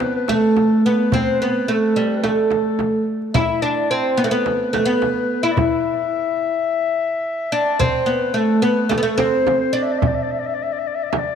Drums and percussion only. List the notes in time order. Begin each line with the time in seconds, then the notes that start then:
0.00 darbuka tek, frame drum
0.28 darbuka tek, frame drum
0.57 darbuka tek, frame drum
0.98 darbuka ka
1.12 frame drum, darbuka dum
1.96 darbuka ka
2.24 darbuka tek, frame drum
2.51 darbuka tek, frame drum
2.79 darbuka tek, frame drum
3.22 darbuka ka
3.35 frame drum, darbuka dum
4.19 darbuka ka
4.46 darbuka tek, frame drum
4.74 frame drum
5.02 darbuka tek, frame drum
5.57 darbuka dum, frame drum
6.00 darbuka ka
6.13 darbuka ka
6.28 darbuka ka
6.42 darbuka ka
7.80 frame drum, darbuka dum
8.91 darbuka tek, frame drum
9.18 darbuka tek, frame drum
9.47 darbuka tek, frame drum
10.02 frame drum, darbuka dum
10.44 darbuka ka
11.13 darbuka tek, frame drum